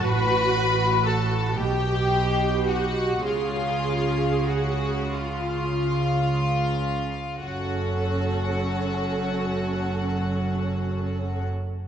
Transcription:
Already playing: viola section F#4
0.05 double bass section A1, cello section A2, violin section B4 B5
1.05 violin section A4 A5
1.57 double bass section B1, cello section B2, violin section G4 G5, viola section G4
2.68 violin section F#4 F#5
3.24 double bass section C#2, cello section C#3, violin section F4 F5, viola section G#4
4.47 violin section F#4 F#5
5.15 viola section F4, violin section F4 F5
7.41 double bass section F#1, cello section F#2, viola section C#4 A4, violin section F#4 F#5

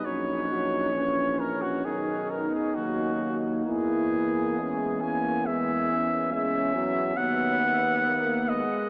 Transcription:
Already playing: trombone section D#4
0.04 tuba A#1, trombone F#3, french horn section C#4, flugelhorn C#5
0.49 trombone F#3
0.93 trombone E3, trombone section C#4
1.39 flugelhorn A#4
1.62 flugelhorn F#4
1.85 tuba B1, trombone D#3, french horn section B3, trombone section D#4, flugelhorn G#4
2.30 flugelhorn A#4
2.54 flugelhorn G#4
2.75 tuba D#2, trombone F#3, french horn section A#3, flugelhorn F#4
3.65 tuba E2, trombone E3, trombone section E4, flugelhorn G#4
4.58 french horn section G#3, trombone section C#4
5.01 french horn section A#3, flugelhorn G#5
5.46 trombone E3, french horn section G#3, trombone section B3, flugelhorn E5
5.90 french horn section C#4
6.32 trombone G#3, trombone section C#4, flugelhorn E5
6.75 trombone F#3, trombone section B3
7.17 tuba D#2, trombone F#3, french horn section B3, flugelhorn F#5
7.62 trombone B3
8.06 french horn section A#3, trombone A#3
8.49 french horn section G#3, flugelhorn D#5

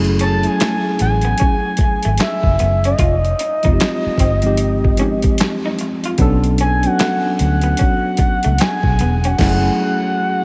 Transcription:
Already playing: fingered electric bass F#1, tine electric piano F#3 A3 C#4 E4 G#4
0.04 closed hi-hat
0.19 clean electric guitar C#4, analog synth lead A5, closed hi-hat
0.43 tine electric piano F#3 A3 C#4 E4 G#4, analog synth lead G#5, closed hi-hat
0.60 clean electric guitar A3, snare, clap, closed hi-hat
0.99 fingered electric bass A1, analog synth lead G#5, muted clean electric guitar stroke, closed hi-hat
1.21 clean electric guitar B3, closed hi-hat
1.38 clean electric guitar C#4, kick, closed hi-hat
1.77 muted fingered electric bass stroke, muted clean electric guitar stroke, kick, closed hi-hat
2.03 fingered electric bass G#1, clean electric guitar A3, closed hi-hat
2.18 analog synth lead E5, muted clean electric guitar stroke, snare, clap, closed hi-hat
2.43 fingered electric bass F#1, kick
2.59 fingered electric bass F#1, clean electric guitar B3, closed hi-hat
2.84 clean electric guitar C#4, analog synth lead D#5, closed hi-hat
2.99 fingered electric bass F1, clean electric guitar F4, kick, closed hi-hat
3.25 closed hi-hat
3.39 muted clean electric guitar stroke, closed hi-hat
3.63 fingered electric bass F1, tine electric piano F3 G#3 C4 D#4 F4, clean electric guitar D#4, kick, closed hi-hat
3.73 tine electric piano G4
3.80 snare, clap, closed hi-hat
4.06 muted fingered electric bass stroke
4.18 fingered electric bass G1, clean electric guitar C4, kick, closed hi-hat
4.42 tine electric piano F3 G#3 C4 D#4, closed hi-hat
4.46 tine electric piano G4
4.57 closed hi-hat
4.84 kick
4.97 fingered electric bass G#1, tine electric piano F3 G#3 C4 D#4 G4, clean electric guitar C#4, closed hi-hat
5.22 kick, closed hi-hat
5.38 snare, clap, closed hi-hat
5.66 clean electric guitar D#4
5.79 muted clean electric guitar stroke, closed hi-hat
6.04 clean electric guitar F4, closed hi-hat
6.18 fingered electric bass B1, tine electric piano F#3 B3 C#4 D4 A4, kick, closed hi-hat
6.44 closed hi-hat
6.58 clean electric guitar C#4, analog synth lead G#5, closed hi-hat
6.83 tine electric piano F#3 B3 C#4 D4 F#4, analog synth lead F#5, closed hi-hat
6.99 clean electric guitar A3, snare, clap, closed hi-hat
7.39 fingered electric bass D2, analog synth lead F#5, muted clean electric guitar stroke, closed hi-hat
7.61 clean electric guitar B3, closed hi-hat
7.77 clean electric guitar C#4, kick, closed hi-hat
8.17 muted clean electric guitar stroke, muted fingered electric bass stroke, kick, closed hi-hat
8.43 fingered electric bass C#2, clean electric guitar A3, closed hi-hat
8.58 analog synth lead G#5, muted clean electric guitar stroke, snare, clap, closed hi-hat
8.83 fingered electric bass B1, kick
8.99 fingered electric bass E1, clean electric guitar B3, closed hi-hat
9.24 clean electric guitar C#4, analog synth lead F#5, closed hi-hat
9.38 fingered electric bass F#1, tine electric piano F#3 A3 C#4 E4, kick, snare, crash
9.48 tine electric piano G#4

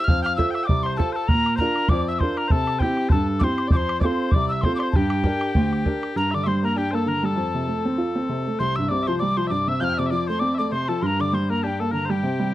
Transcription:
0.04 tin whistle F6, bodhran
0.09 grand piano F2, bagpipes F5
0.22 bagpipes F5 G5, tin whistle F6, bodhran
0.36 grand piano F4 A4 C5, bagpipes E5, tin whistle E6, bodhran
0.51 bagpipes E5 G5, tin whistle E6
0.55 bodhran
0.63 bagpipes G5, tin whistle D6
0.68 grand piano C2, bagpipes D5, bodhran
0.83 bagpipes C5, tin whistle C6, bodhran
0.97 grand piano F4 A4 C5, bagpipes A4, tin whistle A5, bodhran
1.13 bagpipes A4 C5, tin whistle A5
1.28 grand piano A#2, bagpipes A#4, tin whistle A#5, bodhran
1.46 bodhran
1.56 bagpipes A#4 C5, tin whistle A#5, bodhran
1.61 grand piano D4 F4 A#4
1.76 bodhran
1.89 grand piano F2, bagpipes D5, tin whistle D6, bodhran
2.09 bagpipes E5, tin whistle E6
2.19 grand piano D4 F4 A#4, bagpipes C5, tin whistle C6, bodhran
2.37 bagpipes A#4, tin whistle A#5, bodhran
2.48 grand piano C3, bagpipes A4 C5, tin whistle A5, bodhran
2.67 bodhran
2.79 grand piano C4 E4, bagpipes G4 C5, tin whistle G5, bodhran
2.84 grand piano G4
2.97 bodhran
3.09 grand piano G2, bagpipes A4 C5, tin whistle A5, bodhran
3.39 grand piano C4 E4, tin whistle D6, bodhran
3.44 grand piano G4, bagpipes C5, tin whistle C6
3.58 bodhran
3.68 bagpipes D5, bodhran
3.72 grand piano F2, bagpipes C5, tin whistle D6
3.77 tin whistle C6
3.89 bodhran
4.00 bagpipes C5 D5, tin whistle D6, bodhran
4.04 grand piano C4 F4 A4, tin whistle C6
4.31 bagpipes D5, tin whistle D6, bodhran
4.36 grand piano C2
4.49 bagpipes E5, tin whistle E6
4.61 bagpipes C5, tin whistle C6, bodhran
4.65 grand piano C4 F4 A4
4.76 bagpipes D5, tin whistle C6 D6
4.80 bagpipes C5, bodhran
4.92 tin whistle A5, bodhran
4.96 grand piano G2, bagpipes G4, tin whistle G5
5.10 bodhran
5.24 grand piano D4 G4 A#4, bodhran
5.41 bodhran
5.55 grand piano D2, bodhran
5.73 bodhran
5.86 grand piano D4 G4 A#4, bodhran
6.03 bodhran
6.16 grand piano G2, bagpipes A#4, tin whistle A#5
6.31 grand piano D3, bagpipes D5 E5, tin whistle D6
6.44 grand piano G3, bagpipes E5, tin whistle C6
6.48 bagpipes C5
6.63 grand piano A#3, bagpipes A#4, tin whistle A#5
6.76 grand piano D4, bagpipes G4, tin whistle G5
6.91 grand piano A#3, bagpipes C5, tin whistle A5
6.95 bagpipes A4
7.06 grand piano D3, bagpipes A#4, tin whistle A#5
7.23 grand piano G3, bagpipes A4, tin whistle A5
7.36 grand piano F2
7.54 grand piano C3
7.67 grand piano A3
7.85 grand piano C4
7.98 grand piano F4
8.15 grand piano C4
8.29 grand piano C3
8.47 grand piano A3
8.59 grand piano C2, bagpipes C5, tin whistle C6
8.76 grand piano G2, bagpipes E5, tin whistle E6
8.89 grand piano C3, bagpipes D5, tin whistle D6
9.03 bagpipes E5
9.07 grand piano F3, bagpipes C5, tin whistle C6
9.19 grand piano G3, bagpipes D5, tin whistle D6
9.37 grand piano F3, bagpipes C5, tin whistle C6
9.47 grand piano G2, bagpipes E5, tin whistle D6
9.52 bagpipes D5
9.68 grand piano C3, bagpipes E5, tin whistle E6
9.80 grand piano F2, bagpipes F5, tin whistle F6 G6
9.90 bagpipes G5
9.94 bagpipes E5
9.98 grand piano C3, bagpipes D5, tin whistle D6
10.06 bagpipes E5
10.11 grand piano F3, bagpipes D5, tin whistle D6
10.27 grand piano A3, bagpipes C5, tin whistle C6
10.39 grand piano C4, bagpipes D5, tin whistle D6
10.55 bagpipes D5 E5, tin whistle D6
10.59 grand piano A3
10.71 grand piano C3, bagpipes C5, tin whistle C6
10.88 grand piano F3, bagpipes A4, tin whistle A5
11.02 grand piano G2, bagpipes A#4, tin whistle C6
11.06 tin whistle A#5
11.20 grand piano D3, bagpipes D5, tin whistle D6
11.33 grand piano G3, bagpipes C5, tin whistle C6
11.50 grand piano A#3, bagpipes A#4, tin whistle A#5
11.62 grand piano D4, bagpipes G4, tin whistle A5
11.67 tin whistle G5
11.80 grand piano A#3, bagpipes A4, tin whistle A5
11.92 grand piano D3, bagpipes A#4, tin whistle A#5
12.06 grand piano G3, bagpipes C5
12.10 bagpipes G4, tin whistle G5
12.23 grand piano C3
12.39 grand piano G3

